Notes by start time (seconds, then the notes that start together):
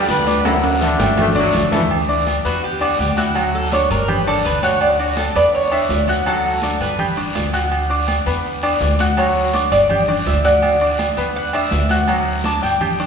Already playing: D3 G3 G4 G5
0.08 D2 B3 D4 G4 B4, high conga, low timbale, short guiro, maracas
0.27 D4 D5 D6, high conga, low agogo, short guiro, maracas
0.44 E3 F#3 A3 E4 F#4 F#5, high conga, high timbale, low agogo, long guiro, maracas
0.64 D3 F#3 A3 D4, high timbale
0.81 D3 A3 A4 A5, low conga, low agogo, short guiro, maracas
0.99 G1 A3 A4 G5, low conga, low timbale, low agogo, short guiro, maracas
1.17 A3, low conga, low timbale, low agogo, long guiro, maracas
1.35 F#3 D4 D5 D6, low conga
1.53 D2, low conga, low timbale, low agogo, short guiro, maracas
1.72 E3 A3 A4 A5, low conga, low timbale, low agogo, short guiro, maracas
1.90 high conga, low agogo, long guiro
2.09 D4 D5 D6, high conga
2.27 high conga, low agogo, short guiro
2.45 E2 B3 F#4 B4 B5, high conga, low agogo, short guiro
2.63 G4, high conga, long guiro
2.81 D4 F#4 D5 D6, high conga, low agogo
2.99 D2 G4, high conga, short guiro
3.17 E4 F#4 F#5 F#6, high conga, low agogo, short guiro
3.35 F#3 F#4 F#5, high conga, low agogo, long guiro
3.54 A4, high conga
3.72 D4 C#5 D5 D6, high conga, low agogo, short guiro
3.90 G1 A#4, high conga, low agogo, short guiro
4.08 G4 B4 G5 G6, high conga, low conga, low agogo, long guiro
4.27 D4 A4 D5 D6, high conga
4.44 D2 B4, high conga, low agogo, short guiro
4.62 F#4 C#5 F#5 F#6, high conga, low agogo, short guiro
4.80 D5, high conga, low agogo, long guiro
4.99 D4 F#4 D5 D6, high conga
5.17 A4, high conga, low agogo, short guiro
5.35 E2 B3 B4 D5 B5, high conga, low agogo, short guiro
5.53 C#5, high conga, long guiro
5.71 D4 E5, high conga, low agogo
5.89 D2, high conga, low timbale, short guiro
6.08 F#4 F#5 F#6, high conga, low agogo, short guiro
6.26 F#3 F#4 A4 F#5, high conga, low agogo, long guiro
6.44 high conga
6.62 D4 D5 D6, high conga, low agogo, short guiro
6.80 G1 B4, high conga, low agogo, short guiro
6.99 G4 G5 G6, high conga, low conga, low agogo, long guiro
7.17 D4 D5 D6, high conga
7.35 D2, high conga, low timbale, low agogo, short guiro
7.53 F#4 F#5 F#6, low agogo, short guiro
7.72 high conga, low agogo, long guiro
7.90 D4 D5 D6, high conga
8.08 high conga, low agogo, short guiro
8.26 E2 B3 B4 B5, high conga, low agogo, short guiro
8.44 high conga, long guiro
8.63 D4 D5 D6, high conga, low agogo
8.80 D2, high conga, low timbale, short guiro
8.99 F#4 F#5 F#6, high conga, low agogo, short guiro
9.17 F#3 F#4 C#5 F#5, high conga, low agogo, long guiro
9.35 high conga
9.53 D4 D5 D6, high conga, low agogo, short guiro
9.72 G1 D5, high conga, low agogo, short guiro
9.90 G4 G5 G6, high conga, low conga, low agogo, long guiro
10.08 D4 D5 D6, high conga, low conga
10.26 D2 E5, high conga, low timbale, low agogo, short guiro
10.44 F#4 D5 F#5 F#6, high conga, low agogo, short guiro
10.62 high conga, low agogo, long guiro
10.81 D4 D5 D6, high conga
10.99 high conga, low agogo, short guiro
11.17 E2 B3 B4 B5, high conga, low agogo, short guiro
11.35 F#5, high conga, long guiro
11.53 D4 D5 E5 D6, high conga, low agogo
11.71 D2, high conga, low timbale, short guiro
11.89 F#4 F#5 F#6, high conga, low agogo, short guiro
12.08 F#3 F#4 F#5, high conga, low agogo, long guiro
12.26 high conga
12.44 D4 D5 A5 D6, high conga, low agogo, short guiro
12.63 G1 G5, high conga, low agogo, short guiro
12.81 G4 G5 G6, high conga, low conga, low agogo, long guiro
12.99 D4 D5 D6, high conga